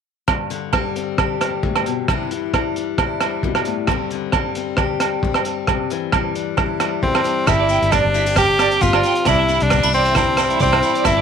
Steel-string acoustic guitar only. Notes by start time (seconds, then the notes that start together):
0.28 G2
0.50 D3
0.73 G3
0.96 C4
1.19 G4
1.43 G3
1.63 A2
1.87 B2
2.09 C3 E3 G3 D4 E4
2.31 E3
2.54 G3
2.77 D4
3.00 E4
3.22 G3
3.44 B2
3.66 A2
3.89 G2 D3 G3 C4, muted steel-string acoustic guitar stroke
4.12 D3
4.34 G3
4.57 C4
4.79 G4
5.01 G3
5.24 C4
5.46 G3
5.69 C3
5.91 E3
6.14 G3
6.36 D4
6.58 E4
6.81 G3
7.03 D4
7.24 G3
7.47 G2 G3 C4
7.71 C4
7.93 C4
8.14 D3 E4
8.27 G4
8.39 C4
8.60 C4, muted steel-string acoustic guitar stroke
8.82 C4
9.26 C3 G3, muted steel-string acoustic guitar stroke
9.49 D4
9.70 B3
9.83 D4
9.94 E3
10.17 D4
10.38 G2 E4
10.60 D4
11.06 G2 G3 C4